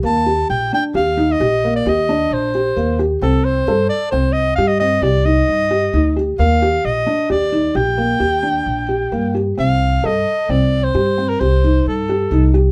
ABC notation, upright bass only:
X:1
M:7/4
L:1/8
Q:1/4=132
K:Cdor
V:1 name="Upright bass" clef=bass
E,,2 B,,, z E,,2 B,,,2 E,,2 B,,,2 E,,2 | C,,2 G,, z C,,2 G,,2 C,,2 G,,2 D,,2 | E,,2 B,,, z E,,2 B,,,2 E,,2 B,,,2 G,,2 | C,,2 G,, z C,,2 G,,2 C,,2 G,,2 C,,2 |]